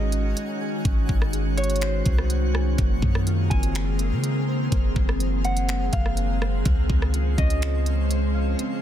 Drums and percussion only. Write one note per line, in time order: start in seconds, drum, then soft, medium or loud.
0.12 closed hi-hat medium
0.37 closed hi-hat medium
0.85 kick loud
0.85 closed hi-hat medium
1.09 kick loud
1.22 cross-stick loud
1.33 closed hi-hat medium
1.58 closed hi-hat medium
1.64 closed hi-hat medium
1.70 closed hi-hat medium
1.76 closed hi-hat medium
1.81 finger snap loud
1.81 closed hi-hat medium
2.06 kick loud
2.06 closed hi-hat medium
2.18 cross-stick medium
2.30 closed hi-hat medium
2.55 cross-stick loud
2.78 kick loud
2.78 closed hi-hat medium
3.02 kick loud
3.15 cross-stick loud
3.27 closed hi-hat medium
3.51 kick medium
3.51 closed hi-hat soft
3.63 closed hi-hat medium
3.75 finger snap loud
3.75 closed hi-hat medium
3.99 closed hi-hat medium
4.24 closed hi-hat medium
4.72 kick loud
4.72 closed hi-hat medium
4.96 kick loud
5.09 cross-stick loud
5.20 closed hi-hat medium
5.45 closed hi-hat soft
5.57 closed hi-hat medium
5.69 finger snap loud
5.69 closed hi-hat medium
5.93 kick loud
5.93 closed hi-hat medium
6.06 cross-stick medium
6.17 closed hi-hat medium
6.42 cross-stick loud
6.65 kick loud
6.65 closed hi-hat medium
6.90 kick loud
7.02 cross-stick loud
7.14 closed hi-hat medium
7.38 kick medium
7.38 closed hi-hat soft
7.50 closed hi-hat medium
7.62 finger snap loud
7.62 closed hi-hat medium
7.86 closed hi-hat medium
8.11 closed hi-hat medium
8.59 closed hi-hat medium